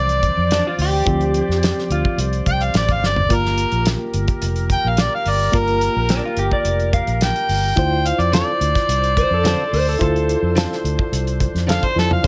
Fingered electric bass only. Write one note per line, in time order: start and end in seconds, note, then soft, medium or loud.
0.00 0.29 C2 loud
0.37 0.60 F2 medium
0.78 1.01 D2 medium
1.06 1.40 D2 medium
1.49 1.71 F2 medium
1.90 2.02 D2 medium
2.18 2.40 C2 loud
2.46 2.72 C2 medium
2.74 2.99 A1 medium
3.02 3.27 G1 medium
3.30 3.64 G1 medium
3.72 3.94 A#1 medium
4.14 4.25 G1 medium
4.42 4.76 F1 medium
4.85 5.07 A#1 medium
5.26 5.48 G1 medium
5.54 5.87 G1 loud
5.96 6.18 A#1 medium
6.37 6.48 G1 loud
6.65 6.99 F1 loud
7.07 7.30 A#1 medium
7.49 7.71 G1 medium
7.77 8.11 D2 loud
8.18 8.41 F2 medium
8.61 8.72 D2 loud
8.88 9.22 C2 loud
9.31 9.53 F2 medium
9.73 9.95 D2 medium
10.01 10.34 D2 medium
10.42 10.65 F2 medium
10.84 10.96 D2 medium
11.12 11.46 C2 loud
11.55 11.77 F2 medium
11.96 12.18 F2 medium